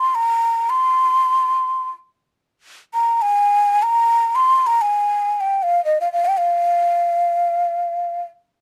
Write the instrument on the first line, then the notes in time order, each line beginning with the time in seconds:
ney
0.00 C6
0.15 A#5
0.70 C6
2.94 A#5
3.22 G#5
3.83 A#5
4.35 C6
4.67 A#5
4.82 G#5
5.41 G5
5.63 F5
5.85 D#5
6.01 F5
6.12 F5
6.25 G5
6.37 F5